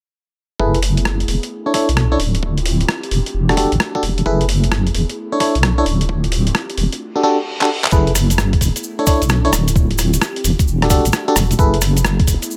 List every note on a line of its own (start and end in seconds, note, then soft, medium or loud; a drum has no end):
0.59 1.25 F#1 medium
0.59 1.50 A3 medium
0.59 1.50 B3 medium
0.59 1.50 E4 medium
0.59 0.79 E4 medium
0.59 1.50 G#4 medium
0.59 0.79 G#4 medium
0.59 0.79 A4 medium
0.59 0.79 B4 medium
0.59 kick loud
0.74 closed hi-hat soft
0.82 open hi-hat loud
0.97 closed hi-hat medium
1.05 cross-stick loud
1.20 closed hi-hat soft
1.28 1.39 E1 medium
1.28 open hi-hat medium
1.43 closed hi-hat medium
1.51 2.19 C#4 medium
1.51 2.19 D4 medium
1.51 2.18 E4 medium
1.51 2.19 A4 medium
1.66 1.73 D4 medium
1.66 1.73 E4 medium
1.66 1.73 A4 medium
1.66 1.73 C#5 medium
1.74 1.88 D4 medium
1.74 1.88 E4 medium
1.74 1.88 A4 medium
1.74 1.88 C#5 loud
1.74 kick loud
1.74 open hi-hat loud
1.89 2.17 B1 medium
1.89 closed hi-hat medium
1.97 cross-stick loud
2.12 2.19 D4 medium
2.12 2.19 E4 medium
2.12 2.19 A4 medium
2.12 2.19 C#5 medium
2.20 2.85 D1 medium
2.20 3.10 C4 medium
2.20 3.10 E4 medium
2.20 3.10 F4 medium
2.20 4.24 G4 medium
2.20 open hi-hat medium
2.35 closed hi-hat medium
2.43 kick loud
2.58 closed hi-hat soft
2.66 open hi-hat loud
2.81 closed hi-hat medium
2.88 cross-stick loud
3.03 closed hi-hat soft
3.11 3.22 E1 medium
3.11 5.15 A3 medium
3.11 4.25 D4 medium
3.11 4.25 F#4 medium
3.11 open hi-hat medium
3.26 closed hi-hat medium
3.34 3.66 E1 medium
3.49 3.56 D4 medium
3.49 3.56 F#4 medium
3.49 3.56 G4 medium
3.49 3.56 A4 medium
3.49 cross-stick medium
3.57 3.72 D4 medium
3.57 3.72 F#4 medium
3.57 3.72 G4 medium
3.57 3.72 A4 loud
3.57 kick loud
3.57 open hi-hat loud
3.72 3.78 A1 loud
3.72 closed hi-hat medium
3.80 cross-stick loud
3.95 4.03 D4 medium
3.95 4.03 F#4 medium
3.95 4.03 G4 medium
3.95 4.03 A4 medium
3.95 kick loud
4.03 4.22 E1 medium
4.03 open hi-hat medium
4.18 closed hi-hat medium
4.26 4.91 F#1 loud
4.26 5.17 B3 medium
4.26 4.45 E4 medium
4.26 6.75 E4 medium
4.26 4.45 G#4 medium
4.26 5.17 G#4 medium
4.26 4.45 A4 medium
4.26 4.45 B4 loud
4.26 kick loud
4.41 closed hi-hat soft
4.49 open hi-hat loud
4.64 closed hi-hat medium
4.72 cross-stick loud
4.87 closed hi-hat soft
4.95 5.06 E1 medium
4.95 open hi-hat medium
5.10 closed hi-hat medium
5.17 5.85 C#4 medium
5.17 5.86 D4 medium
5.17 5.86 A4 medium
5.32 5.39 D4 medium
5.32 5.39 E4 medium
5.32 5.39 A4 medium
5.32 5.39 C#5 medium
5.40 5.55 D4 medium
5.40 5.55 E4 medium
5.40 5.55 A4 medium
5.40 5.55 C#5 loud
5.40 kick loud
5.40 open hi-hat loud
5.55 5.83 B1 medium
5.55 closed hi-hat medium
5.63 cross-stick loud
5.78 5.85 D4 medium
5.78 5.85 E4 medium
5.78 5.85 A4 medium
5.78 5.85 C#5 medium
5.86 6.52 D1 medium
5.86 6.77 C4 medium
5.86 6.77 F4 medium
5.86 7.00 G4 medium
5.86 open hi-hat medium
6.01 closed hi-hat medium
6.09 kick loud
6.24 closed hi-hat soft
6.32 open hi-hat loud
6.47 closed hi-hat medium
6.55 cross-stick loud
6.70 closed hi-hat soft
6.78 6.89 E1 medium
6.78 7.00 A3 medium
6.78 7.00 D4 medium
6.78 7.00 F#4 medium
6.78 open hi-hat medium
6.92 closed hi-hat medium
7.01 reverse cymbal medium
7.16 7.22 D4 medium
7.16 7.22 F#4 medium
7.16 7.22 G4 medium
7.16 7.22 A4 medium
7.23 7.38 D4 loud
7.23 7.38 F#4 medium
7.23 7.38 G4 medium
7.23 7.38 A4 loud
7.61 7.69 D4 medium
7.61 7.69 F#4 medium
7.61 7.69 G4 medium
7.61 7.69 A4 loud
7.61 clap medium
7.84 clap loud
7.92 8.58 F#1 loud
7.92 8.83 A3 medium
7.92 8.83 B3 medium
7.92 8.12 E4 medium
7.92 9.51 E4 medium
7.92 8.83 G#4 medium
7.92 8.12 G#4 medium
7.92 8.12 A4 medium
7.92 8.12 B4 medium
7.92 kick loud
7.92 cabasa soft
8.07 closed hi-hat soft
8.15 cross-stick soft
8.15 open hi-hat loud
8.15 cabasa medium
8.30 closed hi-hat medium
8.30 cabasa medium
8.38 cross-stick loud
8.38 cabasa soft
8.53 kick loud
8.53 closed hi-hat medium
8.61 8.72 E1 medium
8.61 kick medium
8.61 open hi-hat loud
8.61 cabasa medium
8.76 closed hi-hat medium
8.76 cabasa medium
8.83 9.52 C#4 medium
8.83 9.52 D4 medium
8.83 9.52 A4 medium
8.83 cabasa soft
8.99 9.06 D4 medium
8.99 9.06 E4 medium
8.99 9.06 A4 medium
8.99 9.06 C#5 medium
8.99 closed hi-hat soft
9.07 9.21 D4 loud
9.07 9.21 E4 medium
9.07 9.21 A4 medium
9.07 9.21 C#5 loud
9.07 kick loud
9.07 open hi-hat loud
9.07 cabasa loud
9.22 9.49 B1 medium
9.22 closed hi-hat medium
9.22 cabasa medium
9.29 cross-stick loud
9.29 cabasa soft
9.45 9.52 D4 medium
9.45 9.52 E4 medium
9.45 9.52 A4 medium
9.45 9.52 C#5 medium
9.45 closed hi-hat soft
9.52 10.18 D1 medium
9.52 10.43 C4 medium
9.52 10.43 E4 medium
9.52 10.43 F4 medium
9.52 11.57 G4 medium
9.52 cross-stick medium
9.52 open hi-hat medium
9.52 cabasa medium
9.68 closed hi-hat medium
9.68 cabasa medium
9.76 kick loud
9.76 cabasa soft
9.91 closed hi-hat soft
9.98 cross-stick soft
9.98 open hi-hat loud
9.98 cabasa medium
10.14 closed hi-hat medium
10.14 cabasa medium
10.21 cross-stick loud
10.21 cabasa soft
10.36 closed hi-hat soft
10.44 10.55 E1 medium
10.44 11.58 A3 medium
10.44 11.58 D4 medium
10.44 11.58 F#4 medium
10.44 open hi-hat medium
10.44 cabasa medium
10.59 kick loud
10.59 closed hi-hat medium
10.59 cabasa soft
10.67 10.99 E1 medium
10.67 cabasa soft
10.82 10.89 D4 medium
10.82 10.89 F#4 medium
10.82 10.89 G4 medium
10.82 10.89 A4 medium
10.82 cross-stick medium
10.82 closed hi-hat soft
10.90 11.05 D4 loud
10.90 11.05 F#4 medium
10.90 11.05 G4 medium
10.90 11.05 A4 loud
10.90 kick loud
10.90 open hi-hat loud
10.90 cabasa loud
11.05 11.11 A1 loud
11.05 closed hi-hat medium
11.05 cabasa medium
11.13 cross-stick loud
11.13 cabasa soft
11.28 11.36 D4 medium
11.28 11.36 F#4 medium
11.28 11.36 G4 medium
11.28 11.36 A4 loud
11.28 closed hi-hat soft
11.36 11.55 E1 medium
11.36 cross-stick medium
11.36 open hi-hat medium
11.36 cabasa loud
11.51 closed hi-hat medium
11.51 cabasa soft
11.59 12.24 F#1 loud
11.59 12.57 A3 medium
11.59 12.49 B3 medium
11.59 12.57 E4 medium
11.59 11.78 E4 medium
11.59 12.49 G#4 medium
11.59 11.78 G#4 medium
11.59 11.78 A4 medium
11.59 11.78 B4 loud
11.59 kick loud
11.59 cabasa soft
11.74 closed hi-hat soft
11.81 cross-stick soft
11.81 open hi-hat loud
11.81 cabasa medium
11.97 closed hi-hat medium
11.97 cabasa medium
12.05 cross-stick loud
12.05 cabasa soft
12.20 kick loud
12.20 closed hi-hat soft
12.27 12.39 E1 medium
12.27 kick medium
12.27 open hi-hat medium
12.27 cabasa loud
12.42 closed hi-hat medium
12.42 cabasa medium
12.50 12.57 C#4 medium
12.50 12.57 D4 medium
12.50 cabasa soft